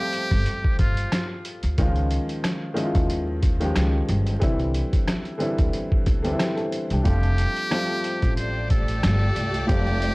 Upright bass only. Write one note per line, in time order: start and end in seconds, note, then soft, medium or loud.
0.31 0.43 G1 medium
0.79 1.04 G1 medium
1.64 1.75 D2 medium
1.78 2.17 C#2 loud
2.95 3.72 D#2 loud
3.76 4.01 C#2 medium
4.09 4.34 G1 loud
4.42 4.80 C2 loud
5.59 5.70 D2 medium
6.07 6.32 D2 loud
6.91 7.02 C2 loud
7.06 7.44 F1 loud
8.23 8.99 A1 loud
9.04 9.28 G1 loud
9.37 9.61 C2 medium
9.69 10.08 F1 loud